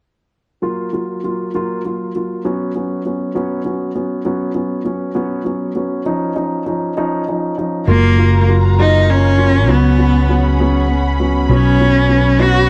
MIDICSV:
0, 0, Header, 1, 5, 480
1, 0, Start_track
1, 0, Key_signature, 6, "major"
1, 0, Tempo, 603622
1, 503, Time_signature, 6, 3, 24, 8
1, 10094, End_track
2, 0, Start_track
2, 0, Title_t, "String section"
2, 0, Program_c, 0, 48
2, 6256, Note_on_c, 0, 82, 70
2, 6257, Note_on_c, 0, 77, 53
2, 6260, Note_on_c, 0, 66, 51
2, 6261, Note_on_c, 0, 61, 61
2, 7692, Note_off_c, 0, 82, 0
2, 7693, Note_off_c, 0, 77, 0
2, 7695, Note_off_c, 0, 66, 0
2, 7711, Note_on_c, 0, 68, 56
2, 7715, Note_on_c, 0, 78, 56
2, 7716, Note_on_c, 0, 83, 67
2, 9128, Note_off_c, 0, 68, 0
2, 9130, Note_off_c, 0, 78, 0
2, 9139, Note_on_c, 0, 73, 52
2, 9140, Note_on_c, 0, 71, 56
2, 10094, Note_off_c, 0, 61, 0
2, 10094, Note_off_c, 0, 71, 0
2, 10094, Note_off_c, 0, 73, 0
2, 10094, Note_off_c, 0, 83, 0
2, 10094, End_track
3, 0, Start_track
3, 0, Title_t, "Cello"
3, 0, Program_c, 1, 42
3, 6268, Note_on_c, 1, 58, 87
3, 6719, Note_off_c, 1, 58, 0
3, 6996, Note_on_c, 1, 63, 81
3, 7240, Note_on_c, 1, 61, 80
3, 7252, Note_off_c, 1, 63, 0
3, 7721, Note_on_c, 1, 59, 68
3, 7733, Note_off_c, 1, 61, 0
3, 8254, Note_off_c, 1, 59, 0
3, 9167, Note_on_c, 1, 61, 75
3, 9873, Note_on_c, 1, 66, 84
3, 9885, Note_off_c, 1, 61, 0
3, 10094, Note_off_c, 1, 66, 0
3, 10094, End_track
4, 0, Start_track
4, 0, Title_t, "Grand piano"
4, 0, Program_c, 2, 0
4, 493, Note_on_c, 2, 54, 57
4, 496, Note_on_c, 2, 58, 49
4, 499, Note_on_c, 2, 65, 65
4, 706, Note_off_c, 2, 54, 0
4, 707, Note_off_c, 2, 58, 0
4, 709, Note_off_c, 2, 65, 0
4, 739, Note_on_c, 2, 54, 51
4, 740, Note_on_c, 2, 58, 43
4, 746, Note_on_c, 2, 65, 57
4, 950, Note_off_c, 2, 54, 0
4, 950, Note_off_c, 2, 58, 0
4, 953, Note_off_c, 2, 65, 0
4, 985, Note_on_c, 2, 54, 48
4, 988, Note_on_c, 2, 58, 45
4, 989, Note_on_c, 2, 65, 57
4, 1193, Note_off_c, 2, 54, 0
4, 1194, Note_off_c, 2, 58, 0
4, 1195, Note_off_c, 2, 65, 0
4, 1229, Note_on_c, 2, 54, 61
4, 1234, Note_on_c, 2, 58, 56
4, 1234, Note_on_c, 2, 65, 68
4, 1435, Note_off_c, 2, 54, 0
4, 1437, Note_off_c, 2, 58, 0
4, 1437, Note_off_c, 2, 65, 0
4, 1470, Note_on_c, 2, 54, 48
4, 1474, Note_on_c, 2, 58, 46
4, 1474, Note_on_c, 2, 65, 56
4, 1676, Note_off_c, 2, 54, 0
4, 1677, Note_off_c, 2, 58, 0
4, 1677, Note_off_c, 2, 65, 0
4, 1711, Note_on_c, 2, 58, 42
4, 1714, Note_on_c, 2, 54, 45
4, 1717, Note_on_c, 2, 65, 54
4, 1916, Note_off_c, 2, 58, 0
4, 1917, Note_off_c, 2, 54, 0
4, 1919, Note_off_c, 2, 65, 0
4, 1946, Note_on_c, 2, 54, 64
4, 1949, Note_on_c, 2, 59, 58
4, 1951, Note_on_c, 2, 61, 67
4, 2153, Note_off_c, 2, 54, 0
4, 2155, Note_off_c, 2, 59, 0
4, 2156, Note_off_c, 2, 61, 0
4, 2191, Note_on_c, 2, 54, 50
4, 2192, Note_on_c, 2, 59, 49
4, 2194, Note_on_c, 2, 61, 60
4, 2395, Note_off_c, 2, 54, 0
4, 2396, Note_off_c, 2, 59, 0
4, 2397, Note_off_c, 2, 61, 0
4, 2428, Note_on_c, 2, 54, 48
4, 2429, Note_on_c, 2, 59, 46
4, 2432, Note_on_c, 2, 61, 54
4, 2633, Note_off_c, 2, 54, 0
4, 2634, Note_off_c, 2, 59, 0
4, 2635, Note_off_c, 2, 61, 0
4, 2663, Note_on_c, 2, 54, 65
4, 2666, Note_on_c, 2, 61, 72
4, 2668, Note_on_c, 2, 59, 60
4, 2869, Note_off_c, 2, 54, 0
4, 2871, Note_off_c, 2, 61, 0
4, 2872, Note_off_c, 2, 59, 0
4, 2901, Note_on_c, 2, 54, 50
4, 2901, Note_on_c, 2, 59, 44
4, 2906, Note_on_c, 2, 61, 58
4, 3107, Note_off_c, 2, 54, 0
4, 3108, Note_off_c, 2, 59, 0
4, 3110, Note_off_c, 2, 61, 0
4, 3144, Note_on_c, 2, 54, 51
4, 3145, Note_on_c, 2, 59, 50
4, 3146, Note_on_c, 2, 61, 56
4, 3348, Note_off_c, 2, 54, 0
4, 3348, Note_off_c, 2, 59, 0
4, 3349, Note_off_c, 2, 61, 0
4, 3380, Note_on_c, 2, 54, 65
4, 3383, Note_on_c, 2, 59, 58
4, 3384, Note_on_c, 2, 61, 66
4, 3585, Note_off_c, 2, 54, 0
4, 3586, Note_off_c, 2, 59, 0
4, 3587, Note_off_c, 2, 61, 0
4, 3616, Note_on_c, 2, 54, 51
4, 3618, Note_on_c, 2, 59, 51
4, 3620, Note_on_c, 2, 61, 59
4, 3822, Note_off_c, 2, 54, 0
4, 3823, Note_off_c, 2, 59, 0
4, 3824, Note_off_c, 2, 61, 0
4, 3855, Note_on_c, 2, 54, 50
4, 3858, Note_on_c, 2, 59, 47
4, 3861, Note_on_c, 2, 61, 61
4, 4062, Note_off_c, 2, 54, 0
4, 4063, Note_off_c, 2, 59, 0
4, 4064, Note_off_c, 2, 61, 0
4, 4093, Note_on_c, 2, 59, 61
4, 4095, Note_on_c, 2, 54, 67
4, 4100, Note_on_c, 2, 61, 72
4, 4301, Note_off_c, 2, 54, 0
4, 4301, Note_off_c, 2, 59, 0
4, 4304, Note_off_c, 2, 61, 0
4, 4333, Note_on_c, 2, 54, 55
4, 4334, Note_on_c, 2, 59, 46
4, 4341, Note_on_c, 2, 61, 59
4, 4541, Note_off_c, 2, 54, 0
4, 4541, Note_off_c, 2, 59, 0
4, 4545, Note_off_c, 2, 61, 0
4, 4575, Note_on_c, 2, 54, 52
4, 4577, Note_on_c, 2, 59, 51
4, 4582, Note_on_c, 2, 61, 56
4, 4783, Note_off_c, 2, 54, 0
4, 4784, Note_off_c, 2, 59, 0
4, 4786, Note_off_c, 2, 61, 0
4, 4814, Note_on_c, 2, 53, 67
4, 4820, Note_on_c, 2, 61, 61
4, 4822, Note_on_c, 2, 63, 72
4, 5024, Note_off_c, 2, 53, 0
4, 5026, Note_off_c, 2, 61, 0
4, 5027, Note_off_c, 2, 63, 0
4, 5054, Note_on_c, 2, 53, 54
4, 5057, Note_on_c, 2, 61, 50
4, 5058, Note_on_c, 2, 63, 63
4, 5264, Note_off_c, 2, 53, 0
4, 5266, Note_off_c, 2, 61, 0
4, 5266, Note_off_c, 2, 63, 0
4, 5297, Note_on_c, 2, 53, 57
4, 5300, Note_on_c, 2, 61, 53
4, 5300, Note_on_c, 2, 63, 59
4, 5506, Note_off_c, 2, 53, 0
4, 5507, Note_off_c, 2, 61, 0
4, 5507, Note_off_c, 2, 63, 0
4, 5543, Note_on_c, 2, 53, 72
4, 5547, Note_on_c, 2, 61, 64
4, 5547, Note_on_c, 2, 63, 79
4, 5749, Note_off_c, 2, 53, 0
4, 5751, Note_off_c, 2, 61, 0
4, 5751, Note_off_c, 2, 63, 0
4, 5790, Note_on_c, 2, 53, 55
4, 5795, Note_on_c, 2, 61, 52
4, 5797, Note_on_c, 2, 63, 60
4, 5994, Note_off_c, 2, 53, 0
4, 5996, Note_off_c, 2, 61, 0
4, 5997, Note_off_c, 2, 63, 0
4, 6026, Note_on_c, 2, 61, 47
4, 6028, Note_on_c, 2, 53, 57
4, 6028, Note_on_c, 2, 63, 58
4, 6232, Note_off_c, 2, 61, 0
4, 6233, Note_off_c, 2, 53, 0
4, 6233, Note_off_c, 2, 63, 0
4, 6261, Note_on_c, 2, 54, 68
4, 6268, Note_on_c, 2, 58, 63
4, 6269, Note_on_c, 2, 65, 75
4, 6471, Note_off_c, 2, 54, 0
4, 6475, Note_off_c, 2, 58, 0
4, 6475, Note_off_c, 2, 65, 0
4, 6503, Note_on_c, 2, 58, 55
4, 6504, Note_on_c, 2, 54, 59
4, 6508, Note_on_c, 2, 65, 65
4, 6713, Note_off_c, 2, 54, 0
4, 6713, Note_off_c, 2, 58, 0
4, 6715, Note_off_c, 2, 65, 0
4, 6746, Note_on_c, 2, 58, 52
4, 6747, Note_on_c, 2, 54, 53
4, 6753, Note_on_c, 2, 65, 64
4, 6955, Note_off_c, 2, 58, 0
4, 6956, Note_off_c, 2, 54, 0
4, 6959, Note_off_c, 2, 65, 0
4, 6989, Note_on_c, 2, 58, 63
4, 6992, Note_on_c, 2, 54, 72
4, 6994, Note_on_c, 2, 65, 79
4, 7197, Note_off_c, 2, 58, 0
4, 7199, Note_off_c, 2, 54, 0
4, 7200, Note_off_c, 2, 65, 0
4, 7227, Note_on_c, 2, 58, 54
4, 7232, Note_on_c, 2, 65, 56
4, 7436, Note_off_c, 2, 58, 0
4, 7439, Note_off_c, 2, 65, 0
4, 7457, Note_on_c, 2, 54, 54
4, 7459, Note_on_c, 2, 58, 50
4, 7464, Note_on_c, 2, 65, 66
4, 7670, Note_off_c, 2, 54, 0
4, 7671, Note_off_c, 2, 58, 0
4, 7674, Note_off_c, 2, 65, 0
4, 7697, Note_on_c, 2, 54, 69
4, 7697, Note_on_c, 2, 59, 66
4, 7702, Note_on_c, 2, 61, 78
4, 7909, Note_off_c, 2, 54, 0
4, 7909, Note_off_c, 2, 59, 0
4, 7912, Note_off_c, 2, 61, 0
4, 7939, Note_on_c, 2, 59, 57
4, 7940, Note_on_c, 2, 54, 58
4, 7943, Note_on_c, 2, 61, 71
4, 8149, Note_off_c, 2, 59, 0
4, 8150, Note_off_c, 2, 54, 0
4, 8151, Note_off_c, 2, 61, 0
4, 8184, Note_on_c, 2, 54, 60
4, 8188, Note_on_c, 2, 59, 56
4, 8191, Note_on_c, 2, 61, 63
4, 8392, Note_off_c, 2, 54, 0
4, 8393, Note_off_c, 2, 59, 0
4, 8395, Note_off_c, 2, 61, 0
4, 8430, Note_on_c, 2, 54, 70
4, 8432, Note_on_c, 2, 59, 68
4, 8435, Note_on_c, 2, 61, 77
4, 8634, Note_off_c, 2, 54, 0
4, 8634, Note_off_c, 2, 59, 0
4, 8636, Note_off_c, 2, 61, 0
4, 8659, Note_on_c, 2, 59, 53
4, 8662, Note_on_c, 2, 61, 59
4, 8867, Note_off_c, 2, 59, 0
4, 8869, Note_off_c, 2, 61, 0
4, 8904, Note_on_c, 2, 59, 52
4, 8905, Note_on_c, 2, 54, 59
4, 8906, Note_on_c, 2, 61, 62
4, 9109, Note_off_c, 2, 54, 0
4, 9109, Note_off_c, 2, 59, 0
4, 9110, Note_off_c, 2, 61, 0
4, 9144, Note_on_c, 2, 54, 73
4, 9148, Note_on_c, 2, 59, 68
4, 9148, Note_on_c, 2, 61, 78
4, 9347, Note_off_c, 2, 54, 0
4, 9349, Note_off_c, 2, 59, 0
4, 9350, Note_off_c, 2, 61, 0
4, 9381, Note_on_c, 2, 54, 63
4, 9383, Note_on_c, 2, 59, 55
4, 9384, Note_on_c, 2, 61, 68
4, 9585, Note_off_c, 2, 54, 0
4, 9586, Note_off_c, 2, 59, 0
4, 9586, Note_off_c, 2, 61, 0
4, 9614, Note_on_c, 2, 54, 59
4, 9619, Note_on_c, 2, 59, 54
4, 9620, Note_on_c, 2, 61, 66
4, 9820, Note_off_c, 2, 54, 0
4, 9822, Note_off_c, 2, 59, 0
4, 9822, Note_off_c, 2, 61, 0
4, 9848, Note_on_c, 2, 54, 74
4, 9855, Note_on_c, 2, 59, 72
4, 9857, Note_on_c, 2, 61, 80
4, 10055, Note_off_c, 2, 54, 0
4, 10059, Note_off_c, 2, 59, 0
4, 10060, Note_off_c, 2, 61, 0
4, 10094, End_track
5, 0, Start_track
5, 0, Title_t, "Fretless electric bass"
5, 0, Program_c, 3, 35
5, 6262, Note_on_c, 3, 30, 82
5, 7707, Note_off_c, 3, 30, 0
5, 7707, Note_on_c, 3, 37, 88
5, 9109, Note_off_c, 3, 37, 0
5, 9138, Note_on_c, 3, 35, 83
5, 10094, Note_off_c, 3, 35, 0
5, 10094, End_track
0, 0, End_of_file